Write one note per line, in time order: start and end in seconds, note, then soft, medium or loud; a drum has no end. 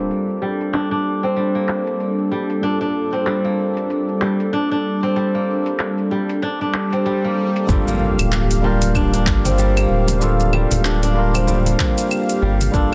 0.00 0.41 G3 medium
0.00 2.60 G3 medium
0.00 7.65 G3 medium
0.00 1.54 A#3 medium
0.00 2.60 A#3 medium
0.00 1.14 C4 medium
0.00 0.70 D4 medium
0.00 2.60 D4 medium
0.00 7.65 D4 medium
0.00 2.61 F4 medium
0.00 2.62 A4 medium
0.00 7.65 A4 medium
0.00 sub drop medium
0.11 open hi-hat soft
0.11 shaker medium
0.29 shaker soft
0.42 1.35 G3 medium
0.61 open hi-hat soft
0.61 shaker medium
0.73 0.91 D4 medium
0.73 clap medium
0.73 open hi-hat soft
0.73 shaker soft
0.91 2.59 D4 medium
0.91 shaker soft
1.23 3.03 C4 medium
1.23 open hi-hat soft
1.23 shaker medium
1.36 2.30 G3 medium
1.36 open hi-hat soft
1.36 shaker soft
1.55 3.44 A#3 medium
1.55 shaker soft
1.69 clap medium
1.87 open hi-hat soft
1.87 shaker medium
2.00 open hi-hat soft
2.00 shaker soft
2.18 shaker soft
2.32 3.25 G3 medium
2.50 open hi-hat medium
2.50 shaker medium
2.62 7.65 G3 medium
2.62 7.65 A#3 medium
2.62 2.80 D4 medium
2.62 7.66 D4 medium
2.62 7.66 F4 medium
2.62 7.67 A4 medium
2.62 open hi-hat soft
2.62 shaker medium
2.81 4.49 D4 medium
2.81 shaker soft
3.13 4.93 C4 medium
3.13 open hi-hat soft
3.13 shaker medium
3.26 4.20 G3 medium
3.26 clap medium
3.26 open hi-hat soft
3.26 shaker soft
3.45 5.34 A#3 medium
3.45 shaker soft
3.77 open hi-hat medium
3.77 shaker medium
3.90 open hi-hat soft
3.90 shaker soft
4.08 shaker soft
4.21 5.15 G3 medium
4.21 clap medium
4.40 open hi-hat medium
4.40 shaker medium
4.53 4.71 D4 medium
4.53 open hi-hat soft
4.53 shaker soft
4.71 6.39 D4 medium
4.71 shaker soft
5.03 6.83 C4 medium
5.03 open hi-hat soft
5.03 shaker medium
5.16 6.10 G3 medium
5.16 open hi-hat soft
5.16 shaker medium
5.35 7.24 A#3 medium
5.35 shaker soft
5.66 open hi-hat soft
5.66 shaker medium
5.79 clap medium
5.79 open hi-hat soft
5.79 shaker soft
5.98 shaker soft
6.11 7.04 G3 medium
6.29 open hi-hat soft
6.29 shaker medium
6.42 6.61 D4 loud
6.42 open hi-hat soft
6.42 swell medium
6.42 shaker soft
6.61 8.29 D4 medium
6.61 shaker soft
6.74 clap medium
6.93 8.73 C4 medium
6.93 open hi-hat medium
6.93 shaker medium
7.06 7.68 G3 medium
7.06 open hi-hat soft
7.06 shaker soft
7.24 7.87 A#3 medium
7.24 shaker soft
7.56 open hi-hat soft
7.56 shaker medium
7.67 7.84 G1 loud
7.67 8.59 G3 medium
7.67 8.63 G3 medium
7.67 8.60 A#3 medium
7.67 8.60 D4 medium
7.67 8.61 F4 medium
7.67 12.94 G4 medium
7.67 12.94 F5 medium
7.67 kick loud
7.67 impact medium
7.67 muted conga soft
7.67 shaker medium
7.71 8.62 A4 loud
7.88 9.76 A#3 medium
7.88 shaker soft
8.01 muted conga medium
8.19 9.28 D1 medium
8.19 open hi-hat medium
8.19 claves medium
8.19 shaker medium
8.32 clap medium
8.32 shaker soft
8.51 open hi-hat soft
8.51 shaker soft
8.62 10.17 G3 loud
8.62 9.57 G3 medium
8.62 10.18 A#3 medium
8.62 10.18 D4 medium
8.62 10.19 F4 medium
8.62 muted conga soft
8.66 10.20 A#4 loud
8.81 open hi-hat medium
8.81 muted conga medium
8.81 shaker medium
8.95 9.14 D4 loud
8.95 kick medium
8.95 claves medium
8.95 shaker medium
9.14 10.82 D4 medium
9.14 open hi-hat soft
9.14 shaker soft
9.26 9.86 G1 medium
9.26 kick loud
9.26 clap medium
9.45 11.25 C4 medium
9.45 open hi-hat medium
9.45 high conga medium
9.45 shaker medium
9.58 10.52 G3 medium
9.58 shaker medium
9.77 11.66 A#3 medium
9.77 open hi-hat soft
9.77 claves medium
9.77 shaker soft
9.90 10.66 D1 medium
10.08 open hi-hat medium
10.08 high conga medium
10.08 low conga medium
10.08 shaker medium
10.20 11.12 G3 loud
10.20 11.13 A#3 medium
10.20 11.13 D4 medium
10.20 11.13 F4 medium
10.20 11.14 A4 loud
10.20 muted conga medium
10.20 shaker medium
10.40 shaker soft
10.53 11.46 G3 medium
10.53 muted conga medium
10.53 claves medium
10.71 11.76 D1 medium
10.71 open hi-hat medium
10.71 high conga soft
10.71 low conga medium
10.71 shaker medium
10.84 11.02 D4 loud
10.84 clap medium
10.84 shaker medium
11.03 12.71 D4 loud
11.03 open hi-hat soft
11.03 shaker soft
11.14 12.70 G3 loud
11.14 12.71 A#3 medium
11.14 12.71 D4 medium
11.14 12.71 F4 medium
11.14 muted conga soft
11.19 12.72 A#4 loud
11.34 12.94 C4 medium
11.34 open hi-hat medium
11.34 muted conga medium
11.34 claves medium
11.34 shaker medium
11.47 12.41 G3 medium
11.47 low conga loud
11.47 shaker medium
11.66 12.94 A#3 medium
11.66 open hi-hat soft
11.66 high conga medium
11.66 shaker soft
11.79 kick loud
11.79 clap medium
11.79 muted conga medium
11.98 open hi-hat medium
11.98 shaker medium
12.11 claves medium
12.11 shaker medium
12.29 open hi-hat soft
12.29 shaker soft
12.42 12.69 G1 loud
12.42 12.94 G3 medium
12.61 open hi-hat medium
12.61 high conga medium
12.61 shaker medium
12.72 12.89 G1 loud
12.72 12.94 G3 loud
12.72 12.94 A#3 medium
12.72 12.92 D4 loud
12.72 12.94 D4 medium
12.72 12.94 F4 medium
12.72 kick loud
12.72 muted conga soft
12.72 shaker medium
12.76 12.94 A4 loud